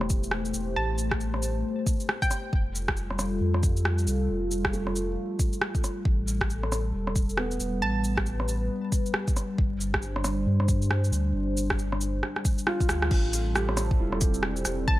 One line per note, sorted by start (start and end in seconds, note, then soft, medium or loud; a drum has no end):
0.00 0.53 E1 loud
0.00 0.33 E3 soft
0.00 2.49 A3 medium
0.00 2.49 G4 medium
0.00 2.49 C5 medium
0.00 cross-stick medium
0.10 kick loud
0.10 shaker medium
0.23 shaker soft
0.31 cross-stick loud
0.45 shaker soft
0.54 0.74 E1 medium
0.54 shaker medium
0.76 1.63 A1 medium
0.76 1.00 A5 medium
0.98 shaker medium
1.11 kick medium
1.11 cross-stick loud
1.20 shaker soft
1.34 cross-stick soft
1.42 shaker medium
1.87 kick loud
1.87 shaker medium
2.00 shaker soft
2.09 cross-stick loud
2.22 2.58 G5 medium
2.22 kick loud
2.22 shaker soft
2.31 cross-stick soft
2.31 shaker medium
2.53 3.40 F1 loud
2.53 6.02 G3 medium
2.53 6.02 F4 medium
2.53 6.02 A4 medium
2.53 kick loud
2.75 shaker medium
2.88 kick medium
2.88 cross-stick loud
2.97 shaker soft
3.10 cross-stick soft
3.19 cross-stick medium
3.19 shaker medium
3.40 4.06 F2 loud
3.54 cross-stick soft
3.63 kick loud
3.63 shaker medium
3.77 shaker soft
3.85 cross-stick loud
3.98 shaker soft
4.07 4.28 C2 medium
4.07 shaker medium
4.29 5.16 F1 medium
4.51 shaker medium
4.65 kick medium
4.65 cross-stick loud
4.73 6.07 A3 medium
4.73 shaker soft
4.87 cross-stick soft
4.96 shaker medium
5.39 kick loud
5.39 shaker medium
5.53 shaker soft
5.62 cross-stick loud
5.75 kick loud
5.75 shaker soft
5.84 cross-stick soft
5.84 shaker medium
6.05 6.92 A1 loud
6.05 13.07 G3 medium
6.05 7.80 A4 medium
6.05 kick loud
6.28 shaker medium
6.41 kick medium
6.41 cross-stick loud
6.50 shaker soft
6.63 cross-stick soft
6.72 cross-stick medium
6.72 shaker soft
6.93 7.59 E1 loud
7.07 cross-stick soft
7.16 kick loud
7.16 shaker soft
7.29 shaker soft
7.37 8.71 B3 medium
7.37 cross-stick loud
7.51 shaker soft
7.60 7.80 E1 medium
7.60 shaker medium
7.82 8.69 A1 loud
7.82 9.57 B4 medium
7.82 8.05 A5 loud
8.04 shaker soft
8.17 kick medium
8.17 cross-stick loud
8.26 shaker soft
8.40 cross-stick medium
8.48 shaker medium
8.92 kick loud
8.92 shaker medium
9.06 shaker soft
9.14 cross-stick loud
9.28 kick loud
9.28 shaker soft
9.37 cross-stick soft
9.37 shaker medium
9.58 10.45 G1 loud
9.58 13.08 D4 medium
9.58 13.08 C5 medium
9.58 kick loud
9.81 shaker medium
9.94 kick medium
9.94 cross-stick loud
10.02 shaker soft
10.16 cross-stick medium
10.24 cross-stick medium
10.24 shaker medium
10.46 11.11 G2 loud
10.60 cross-stick medium
10.68 kick loud
10.68 shaker medium
10.82 shaker soft
10.91 cross-stick loud
11.04 shaker soft
11.12 11.33 D2 medium
11.12 shaker medium
11.34 12.21 G1 loud
11.57 shaker medium
11.70 kick medium
11.70 cross-stick loud
11.79 shaker soft
11.92 cross-stick medium
12.01 shaker medium
12.23 cross-stick medium
12.36 cross-stick medium
12.45 kick loud
12.45 shaker medium
12.58 shaker soft
12.67 13.29 F4 medium
12.67 cross-stick medium
12.80 kick loud
12.80 shaker soft
12.89 13.10 D2 medium
12.89 cross-stick loud
12.89 shaker medium
13.02 cross-stick medium
13.11 13.98 A1 loud
13.11 14.99 G3 medium
13.11 14.99 C4 medium
13.11 14.86 A4 medium
13.11 kick loud
13.11 crash loud
13.33 open hi-hat medium
13.33 shaker medium
13.55 14.89 G4 medium
13.55 cross-stick loud
13.55 shaker soft
13.69 cross-stick medium
13.77 cross-stick medium
13.77 open hi-hat medium
13.77 shaker medium
13.91 kick loud
13.99 14.64 E1 loud
13.99 14.99 E4 medium
14.12 cross-stick medium
14.21 kick loud
14.21 open hi-hat medium
14.21 shaker medium
14.34 shaker soft
14.43 cross-stick loud
14.56 shaker soft
14.65 14.86 E1 medium
14.65 cross-stick medium
14.65 open hi-hat medium
14.65 shaker medium
14.88 14.99 A1 loud
14.88 14.99 B4 medium
14.88 14.99 A5 loud
14.88 kick loud